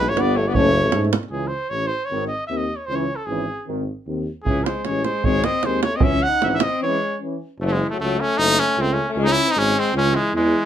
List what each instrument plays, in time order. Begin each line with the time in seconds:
Already playing: tuba B1, trumpet B4
0.00 alto saxophone G#3
0.08 alto saxophone A3, trumpet C#5, davul high
0.14 tuba G1, trombone B3, alto saxophone B3, euphonium D4, davul high
0.21 trumpet D5
0.37 alto saxophone A3, trumpet C#5
0.48 alto saxophone B3, trumpet D5
0.53 tuba F#1, trombone A3, alto saxophone A3, euphonium C#4, trumpet C#5, davul low
0.65 davul high
0.91 tuba G#2, trombone A3, euphonium C#4, davul high
1.05 davul high
1.13 davul high
1.23 davul high
1.30 tuba C#2, trombone E3, euphonium C#4, trumpet G#4
1.48 trumpet C5
1.70 tuba A1, trombone E3, euphonium C#4, trumpet C#5
1.87 trumpet C5
2.05 trumpet C#5
2.11 tuba G#1, trombone D#3, euphonium C4
2.28 trumpet D#5
2.47 tuba D#2, trombone D#3, euphonium C4, trumpet E5
2.57 trumpet D#5
2.76 trumpet C#5
2.86 tuba C#2, trumpet C5
2.91 trombone E3, euphonium C#4
2.95 trumpet C#5
3.16 trumpet A4
3.26 tuba G#1, trombone E3, euphonium C#4, trumpet G#4
3.67 tuba G#1, trombone D#3, euphonium C4
4.06 tuba D#2, trombone D#3, euphonium C4
4.43 tuba C#2, trombone E3, alto saxophone E3, euphonium C#4, trumpet G#4, davul low
4.64 alto saxophone G#3, trumpet C5, davul high
4.83 tuba A1, trombone E3, alto saxophone G#3, euphonium C#4, trumpet C#5, davul high
5.04 alto saxophone G#3, trumpet C5, davul high
5.23 tuba G#1, trombone D#3, alto saxophone G#3, euphonium C4, trumpet C#5, davul low
5.44 alto saxophone C4, trumpet D#5, davul high
5.63 tuba D#2, trombone D#3, alto saxophone G#3, euphonium C4, trumpet C5, davul high
5.83 alto saxophone A3, trumpet C#5, davul high
5.96 alto saxophone C4, trumpet D#5
6.01 tuba C#2, trombone E3, euphonium C#4, trumpet E5, davul low
6.06 alto saxophone C#4
6.23 trumpet F#5
6.28 alto saxophone D#4
6.41 tuba G#1, trombone E3, euphonium C#4, trumpet E5, davul high
6.47 alto saxophone C#4 D#4, trumpet F#5
6.54 alto saxophone C#4, trumpet E5
6.60 trumpet D#5, davul high
6.66 alto saxophone C4
6.81 trombone E3, euphonium C#4, trumpet C#5
6.87 alto saxophone G#3
7.21 trombone E3, euphonium C#4
7.59 tuba F#1, alto saxophone F#3, trumpet A3
7.64 alto saxophone E3 F#3, trumpet A3
7.72 alto saxophone E3, trumpet G#3
7.90 alto saxophone F#3, trumpet A3
7.98 tuba C#2, alto saxophone F#3, trumpet A3
8.19 alto saxophone A3, trumpet C#4
8.38 tuba F#1, alto saxophone A3, trumpet D#4
8.59 alto saxophone A3, trumpet C#4
8.77 tuba C#2, alto saxophone A3
8.81 trumpet C4
8.89 alto saxophone A3, trumpet C#4
9.09 alto saxophone A3
9.13 tuba C#2, trumpet C#4
9.19 alto saxophone G#3
9.24 trumpet D#4
9.28 alto saxophone C#4, trumpet E4
9.48 alto saxophone C4, trumpet D#4
9.55 tuba G#1, alto saxophone G#3, trumpet C#4
9.76 alto saxophone G#3, trumpet C4
9.94 tuba C#2, alto saxophone G#3, trumpet C#4
10.13 alto saxophone E3, trumpet G#3
10.33 tuba E2, alto saxophone E3, trumpet G#3